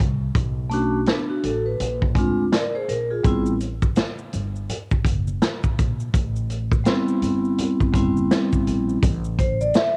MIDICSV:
0, 0, Header, 1, 4, 480
1, 0, Start_track
1, 0, Tempo, 722892
1, 233, Time_signature, 4, 2, 24, 8
1, 6619, End_track
2, 0, Start_track
2, 0, Title_t, "Vibraphone"
2, 0, Program_c, 0, 11
2, 462, Note_on_c, 0, 57, 83
2, 471, Note_on_c, 0, 61, 63
2, 480, Note_on_c, 0, 62, 65
2, 488, Note_on_c, 0, 66, 85
2, 650, Note_off_c, 0, 57, 0
2, 655, Note_off_c, 0, 61, 0
2, 659, Note_off_c, 0, 62, 0
2, 663, Note_off_c, 0, 66, 0
2, 717, Note_on_c, 0, 62, 56
2, 721, Note_on_c, 0, 59, 49
2, 852, Note_off_c, 0, 62, 0
2, 854, Note_off_c, 0, 59, 0
2, 859, Note_on_c, 0, 66, 66
2, 863, Note_on_c, 0, 62, 52
2, 950, Note_off_c, 0, 66, 0
2, 951, Note_off_c, 0, 62, 0
2, 958, Note_on_c, 0, 69, 62
2, 963, Note_on_c, 0, 66, 51
2, 1092, Note_off_c, 0, 69, 0
2, 1095, Note_off_c, 0, 66, 0
2, 1101, Note_on_c, 0, 71, 58
2, 1327, Note_off_c, 0, 71, 0
2, 1427, Note_on_c, 0, 56, 73
2, 1435, Note_on_c, 0, 60, 67
2, 1444, Note_on_c, 0, 62, 61
2, 1452, Note_on_c, 0, 65, 84
2, 1613, Note_off_c, 0, 56, 0
2, 1616, Note_off_c, 0, 60, 0
2, 1621, Note_off_c, 0, 62, 0
2, 1625, Note_off_c, 0, 65, 0
2, 1678, Note_on_c, 0, 74, 61
2, 1683, Note_on_c, 0, 70, 51
2, 1813, Note_off_c, 0, 74, 0
2, 1815, Note_off_c, 0, 70, 0
2, 1826, Note_on_c, 0, 72, 56
2, 1830, Note_on_c, 0, 68, 47
2, 1913, Note_off_c, 0, 72, 0
2, 1915, Note_off_c, 0, 68, 0
2, 1917, Note_on_c, 0, 70, 62
2, 2052, Note_off_c, 0, 70, 0
2, 2062, Note_on_c, 0, 68, 57
2, 2066, Note_on_c, 0, 65, 53
2, 2147, Note_on_c, 0, 55, 74
2, 2154, Note_on_c, 0, 59, 64
2, 2162, Note_on_c, 0, 60, 75
2, 2170, Note_on_c, 0, 64, 87
2, 2288, Note_off_c, 0, 68, 0
2, 2290, Note_off_c, 0, 65, 0
2, 2332, Note_off_c, 0, 55, 0
2, 2336, Note_off_c, 0, 59, 0
2, 2340, Note_off_c, 0, 60, 0
2, 2344, Note_off_c, 0, 64, 0
2, 4543, Note_on_c, 0, 55, 69
2, 4551, Note_on_c, 0, 59, 72
2, 4560, Note_on_c, 0, 60, 77
2, 4567, Note_on_c, 0, 64, 84
2, 5229, Note_off_c, 0, 55, 0
2, 5233, Note_off_c, 0, 59, 0
2, 5238, Note_off_c, 0, 60, 0
2, 5242, Note_off_c, 0, 64, 0
2, 5263, Note_on_c, 0, 55, 75
2, 5270, Note_on_c, 0, 59, 62
2, 5278, Note_on_c, 0, 60, 68
2, 5287, Note_on_c, 0, 64, 78
2, 5950, Note_off_c, 0, 55, 0
2, 5953, Note_off_c, 0, 59, 0
2, 5957, Note_off_c, 0, 60, 0
2, 5962, Note_off_c, 0, 64, 0
2, 6234, Note_on_c, 0, 72, 85
2, 6368, Note_off_c, 0, 72, 0
2, 6381, Note_on_c, 0, 74, 93
2, 6423, Note_off_c, 0, 74, 0
2, 6478, Note_on_c, 0, 76, 95
2, 6619, Note_off_c, 0, 76, 0
2, 6619, End_track
3, 0, Start_track
3, 0, Title_t, "Upright bass"
3, 0, Program_c, 1, 32
3, 2, Note_on_c, 1, 36, 81
3, 215, Note_off_c, 1, 36, 0
3, 233, Note_on_c, 1, 35, 95
3, 686, Note_off_c, 1, 35, 0
3, 954, Note_on_c, 1, 33, 84
3, 1171, Note_off_c, 1, 33, 0
3, 1196, Note_on_c, 1, 34, 89
3, 1412, Note_off_c, 1, 34, 0
3, 1431, Note_on_c, 1, 38, 90
3, 1649, Note_off_c, 1, 38, 0
3, 1916, Note_on_c, 1, 34, 72
3, 2132, Note_off_c, 1, 34, 0
3, 2156, Note_on_c, 1, 33, 83
3, 2608, Note_off_c, 1, 33, 0
3, 2877, Note_on_c, 1, 31, 83
3, 3092, Note_off_c, 1, 31, 0
3, 3351, Note_on_c, 1, 30, 87
3, 3569, Note_off_c, 1, 30, 0
3, 3845, Note_on_c, 1, 34, 77
3, 4057, Note_off_c, 1, 34, 0
3, 4076, Note_on_c, 1, 33, 98
3, 4528, Note_off_c, 1, 33, 0
3, 4794, Note_on_c, 1, 31, 73
3, 5011, Note_off_c, 1, 31, 0
3, 5271, Note_on_c, 1, 30, 74
3, 5489, Note_off_c, 1, 30, 0
3, 5754, Note_on_c, 1, 34, 79
3, 5971, Note_off_c, 1, 34, 0
3, 5995, Note_on_c, 1, 33, 100
3, 6448, Note_off_c, 1, 33, 0
3, 6619, End_track
4, 0, Start_track
4, 0, Title_t, "Drums"
4, 0, Note_on_c, 9, 36, 80
4, 66, Note_off_c, 9, 36, 0
4, 232, Note_on_c, 9, 36, 110
4, 232, Note_on_c, 9, 42, 82
4, 298, Note_off_c, 9, 36, 0
4, 298, Note_off_c, 9, 42, 0
4, 471, Note_on_c, 9, 42, 62
4, 537, Note_off_c, 9, 42, 0
4, 705, Note_on_c, 9, 42, 68
4, 714, Note_on_c, 9, 38, 102
4, 772, Note_off_c, 9, 42, 0
4, 780, Note_off_c, 9, 38, 0
4, 952, Note_on_c, 9, 42, 80
4, 1019, Note_off_c, 9, 42, 0
4, 1194, Note_on_c, 9, 42, 92
4, 1261, Note_off_c, 9, 42, 0
4, 1341, Note_on_c, 9, 36, 74
4, 1407, Note_off_c, 9, 36, 0
4, 1429, Note_on_c, 9, 36, 92
4, 1436, Note_on_c, 9, 42, 79
4, 1495, Note_off_c, 9, 36, 0
4, 1502, Note_off_c, 9, 42, 0
4, 1676, Note_on_c, 9, 38, 88
4, 1676, Note_on_c, 9, 42, 91
4, 1742, Note_off_c, 9, 38, 0
4, 1743, Note_off_c, 9, 42, 0
4, 1918, Note_on_c, 9, 42, 68
4, 1984, Note_off_c, 9, 42, 0
4, 2153, Note_on_c, 9, 42, 75
4, 2155, Note_on_c, 9, 36, 114
4, 2156, Note_on_c, 9, 82, 58
4, 2220, Note_off_c, 9, 42, 0
4, 2221, Note_off_c, 9, 36, 0
4, 2222, Note_off_c, 9, 82, 0
4, 2297, Note_on_c, 9, 82, 42
4, 2363, Note_off_c, 9, 82, 0
4, 2393, Note_on_c, 9, 42, 60
4, 2396, Note_on_c, 9, 82, 46
4, 2460, Note_off_c, 9, 42, 0
4, 2462, Note_off_c, 9, 82, 0
4, 2538, Note_on_c, 9, 36, 89
4, 2538, Note_on_c, 9, 82, 46
4, 2604, Note_off_c, 9, 36, 0
4, 2605, Note_off_c, 9, 82, 0
4, 2628, Note_on_c, 9, 42, 66
4, 2629, Note_on_c, 9, 82, 62
4, 2636, Note_on_c, 9, 38, 109
4, 2694, Note_off_c, 9, 42, 0
4, 2696, Note_off_c, 9, 82, 0
4, 2703, Note_off_c, 9, 38, 0
4, 2779, Note_on_c, 9, 82, 40
4, 2846, Note_off_c, 9, 82, 0
4, 2873, Note_on_c, 9, 42, 68
4, 2881, Note_on_c, 9, 63, 43
4, 2881, Note_on_c, 9, 64, 58
4, 2881, Note_on_c, 9, 82, 41
4, 2939, Note_off_c, 9, 42, 0
4, 2947, Note_off_c, 9, 63, 0
4, 2947, Note_off_c, 9, 64, 0
4, 2947, Note_off_c, 9, 82, 0
4, 3027, Note_on_c, 9, 82, 37
4, 3093, Note_off_c, 9, 82, 0
4, 3117, Note_on_c, 9, 42, 87
4, 3118, Note_on_c, 9, 64, 49
4, 3118, Note_on_c, 9, 82, 49
4, 3183, Note_off_c, 9, 42, 0
4, 3184, Note_off_c, 9, 64, 0
4, 3184, Note_off_c, 9, 82, 0
4, 3260, Note_on_c, 9, 82, 42
4, 3263, Note_on_c, 9, 36, 82
4, 3326, Note_off_c, 9, 82, 0
4, 3329, Note_off_c, 9, 36, 0
4, 3350, Note_on_c, 9, 36, 84
4, 3356, Note_on_c, 9, 42, 85
4, 3361, Note_on_c, 9, 82, 47
4, 3417, Note_off_c, 9, 36, 0
4, 3423, Note_off_c, 9, 42, 0
4, 3427, Note_off_c, 9, 82, 0
4, 3501, Note_on_c, 9, 63, 57
4, 3501, Note_on_c, 9, 82, 46
4, 3567, Note_off_c, 9, 63, 0
4, 3567, Note_off_c, 9, 82, 0
4, 3598, Note_on_c, 9, 38, 102
4, 3598, Note_on_c, 9, 42, 89
4, 3600, Note_on_c, 9, 82, 60
4, 3664, Note_off_c, 9, 38, 0
4, 3664, Note_off_c, 9, 42, 0
4, 3666, Note_off_c, 9, 82, 0
4, 3742, Note_on_c, 9, 82, 49
4, 3743, Note_on_c, 9, 36, 79
4, 3808, Note_off_c, 9, 82, 0
4, 3809, Note_off_c, 9, 36, 0
4, 3841, Note_on_c, 9, 42, 67
4, 3843, Note_on_c, 9, 64, 53
4, 3843, Note_on_c, 9, 82, 43
4, 3844, Note_on_c, 9, 36, 87
4, 3907, Note_off_c, 9, 42, 0
4, 3910, Note_off_c, 9, 36, 0
4, 3910, Note_off_c, 9, 64, 0
4, 3910, Note_off_c, 9, 82, 0
4, 3983, Note_on_c, 9, 82, 41
4, 4050, Note_off_c, 9, 82, 0
4, 4075, Note_on_c, 9, 36, 101
4, 4076, Note_on_c, 9, 42, 93
4, 4081, Note_on_c, 9, 82, 58
4, 4142, Note_off_c, 9, 36, 0
4, 4142, Note_off_c, 9, 42, 0
4, 4147, Note_off_c, 9, 82, 0
4, 4223, Note_on_c, 9, 82, 39
4, 4290, Note_off_c, 9, 82, 0
4, 4314, Note_on_c, 9, 42, 64
4, 4325, Note_on_c, 9, 82, 43
4, 4380, Note_off_c, 9, 42, 0
4, 4391, Note_off_c, 9, 82, 0
4, 4459, Note_on_c, 9, 36, 96
4, 4467, Note_on_c, 9, 63, 47
4, 4467, Note_on_c, 9, 82, 41
4, 4525, Note_off_c, 9, 36, 0
4, 4533, Note_off_c, 9, 63, 0
4, 4533, Note_off_c, 9, 82, 0
4, 4549, Note_on_c, 9, 42, 72
4, 4556, Note_on_c, 9, 82, 66
4, 4557, Note_on_c, 9, 38, 111
4, 4615, Note_off_c, 9, 42, 0
4, 4622, Note_off_c, 9, 82, 0
4, 4623, Note_off_c, 9, 38, 0
4, 4703, Note_on_c, 9, 82, 39
4, 4769, Note_off_c, 9, 82, 0
4, 4794, Note_on_c, 9, 42, 79
4, 4804, Note_on_c, 9, 63, 43
4, 4804, Note_on_c, 9, 64, 54
4, 4804, Note_on_c, 9, 82, 42
4, 4860, Note_off_c, 9, 42, 0
4, 4871, Note_off_c, 9, 63, 0
4, 4871, Note_off_c, 9, 64, 0
4, 4871, Note_off_c, 9, 82, 0
4, 4946, Note_on_c, 9, 82, 37
4, 5012, Note_off_c, 9, 82, 0
4, 5035, Note_on_c, 9, 42, 85
4, 5039, Note_on_c, 9, 64, 51
4, 5039, Note_on_c, 9, 82, 54
4, 5101, Note_off_c, 9, 42, 0
4, 5105, Note_off_c, 9, 64, 0
4, 5105, Note_off_c, 9, 82, 0
4, 5182, Note_on_c, 9, 36, 80
4, 5186, Note_on_c, 9, 63, 54
4, 5186, Note_on_c, 9, 82, 41
4, 5249, Note_off_c, 9, 36, 0
4, 5252, Note_off_c, 9, 63, 0
4, 5252, Note_off_c, 9, 82, 0
4, 5270, Note_on_c, 9, 36, 80
4, 5277, Note_on_c, 9, 42, 76
4, 5280, Note_on_c, 9, 82, 44
4, 5336, Note_off_c, 9, 36, 0
4, 5344, Note_off_c, 9, 42, 0
4, 5346, Note_off_c, 9, 82, 0
4, 5424, Note_on_c, 9, 63, 58
4, 5424, Note_on_c, 9, 82, 46
4, 5491, Note_off_c, 9, 63, 0
4, 5491, Note_off_c, 9, 82, 0
4, 5518, Note_on_c, 9, 38, 90
4, 5518, Note_on_c, 9, 42, 82
4, 5521, Note_on_c, 9, 82, 57
4, 5584, Note_off_c, 9, 38, 0
4, 5585, Note_off_c, 9, 42, 0
4, 5587, Note_off_c, 9, 82, 0
4, 5661, Note_on_c, 9, 63, 59
4, 5661, Note_on_c, 9, 82, 41
4, 5662, Note_on_c, 9, 36, 73
4, 5728, Note_off_c, 9, 36, 0
4, 5728, Note_off_c, 9, 63, 0
4, 5728, Note_off_c, 9, 82, 0
4, 5756, Note_on_c, 9, 42, 70
4, 5763, Note_on_c, 9, 64, 54
4, 5763, Note_on_c, 9, 82, 47
4, 5823, Note_off_c, 9, 42, 0
4, 5829, Note_off_c, 9, 64, 0
4, 5829, Note_off_c, 9, 82, 0
4, 5903, Note_on_c, 9, 82, 34
4, 5969, Note_off_c, 9, 82, 0
4, 5992, Note_on_c, 9, 42, 94
4, 5994, Note_on_c, 9, 36, 113
4, 5997, Note_on_c, 9, 82, 67
4, 6059, Note_off_c, 9, 42, 0
4, 6060, Note_off_c, 9, 36, 0
4, 6063, Note_off_c, 9, 82, 0
4, 6138, Note_on_c, 9, 82, 43
4, 6204, Note_off_c, 9, 82, 0
4, 6232, Note_on_c, 9, 42, 66
4, 6233, Note_on_c, 9, 36, 82
4, 6238, Note_on_c, 9, 82, 47
4, 6299, Note_off_c, 9, 36, 0
4, 6299, Note_off_c, 9, 42, 0
4, 6304, Note_off_c, 9, 82, 0
4, 6381, Note_on_c, 9, 63, 42
4, 6381, Note_on_c, 9, 82, 40
4, 6447, Note_off_c, 9, 63, 0
4, 6447, Note_off_c, 9, 82, 0
4, 6467, Note_on_c, 9, 42, 73
4, 6470, Note_on_c, 9, 82, 65
4, 6476, Note_on_c, 9, 38, 117
4, 6534, Note_off_c, 9, 42, 0
4, 6537, Note_off_c, 9, 82, 0
4, 6542, Note_off_c, 9, 38, 0
4, 6619, End_track
0, 0, End_of_file